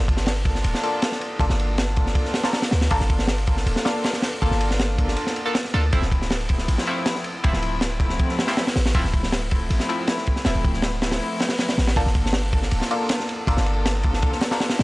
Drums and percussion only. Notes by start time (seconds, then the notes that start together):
0.08 kick, ride
0.17 snare
0.26 snare, open hi-hat
0.36 ride
0.45 kick, ride
0.55 snare
0.64 ride
0.74 snare
0.83 ride
1.02 snare, ride
1.12 snare
1.21 ride
1.39 kick, ride
1.49 snare
1.59 ride
1.78 snare, ride
1.96 kick, ride
2.06 snare
2.15 kick, ride
2.25 snare
2.34 snare, open hi-hat
2.44 snare, open hi-hat
2.53 snare, open hi-hat
2.62 snare, open hi-hat
2.71 snare, open hi-hat
2.81 snare, open hi-hat
2.90 kick, ride
3.00 snare
3.10 kick, ride
3.19 snare
3.27 snare, open hi-hat
3.38 ride
3.47 kick, ride
3.57 snare
3.67 ride
3.76 snare
3.85 snare, open hi-hat
4.04 snare, open hi-hat
4.13 snare
4.22 snare, open hi-hat
4.33 ride
4.42 kick, ride
4.51 snare
4.61 ride
4.71 snare
4.79 snare, ride
4.98 kick, ride
5.08 snare
5.16 ride
5.27 snare
5.36 ride
5.55 snare, ride
5.65 snare
5.74 ride
5.93 kick, ride
6.02 snare
6.12 kick, ride
6.22 snare
6.30 snare, open hi-hat
6.41 ride
6.49 kick, ride
6.58 snare
6.68 ride
6.78 snare
6.87 ride
7.06 snare, ride
7.15 snare
7.24 ride
7.44 kick, ride
7.53 snare
7.63 ride
7.81 snare, ride
8.00 kick, ride
8.09 snare
8.19 kick, ride
8.29 snare
8.39 snare, open hi-hat
8.47 snare, open hi-hat
8.57 snare, open hi-hat
8.67 snare, open hi-hat
8.76 snare, open hi-hat
8.85 snare, open hi-hat
8.95 kick, ride
9.05 snare
9.13 kick, ride
9.23 snare
9.32 snare, open hi-hat
9.42 ride
9.51 kick, ride
9.70 ride
9.80 snare
9.90 ride
10.07 snare, ride
10.17 snare
10.27 kick, ride
10.36 snare
10.45 snare, open hi-hat
10.55 ride
10.64 kick, ride
10.74 snare
10.82 snare, ride
11.02 snare, open hi-hat
11.11 snare, open hi-hat
11.40 snare, open hi-hat
11.49 snare, open hi-hat
11.58 snare, open hi-hat
11.68 snare, open hi-hat
11.78 snare, open hi-hat
11.87 snare, open hi-hat
11.96 kick, ride
12.07 snare
12.15 kick, ride
12.26 snare
12.33 snare, open hi-hat
12.43 ride
12.53 kick, ride
12.62 snare
12.71 ride
12.81 snare
12.91 ride
13.09 snare, ride
13.20 snare
13.29 ride
13.47 kick, ride
13.57 snare
13.66 ride
13.86 snare, ride
14.03 kick, ride
14.13 snare
14.22 kick, ride
14.32 snare
14.41 snare, open hi-hat
14.51 snare, open hi-hat
14.60 snare, open hi-hat
14.70 snare, open hi-hat
14.79 snare, open hi-hat